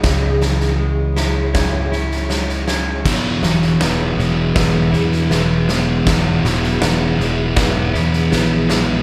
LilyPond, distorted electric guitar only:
\new Staff \with { instrumentName = "Distorted electric guitar" } { \clef bass \time 4/4 \key e \major \tempo 4 = 80 r1 | <e, b, e>8 <e, b, e>8 <e, b, e>8 <e, b, e>8 <e, b, e>8 <e, b, e>8 <e, b, e>8 <e, b, e>8 | <e, b, e>8 <e, b, e>8 <e, b, e>8 <e, b, e>8 <e, b, e>8 <e, b, e>8 <e, b, e>8 <e, b, e>8 | }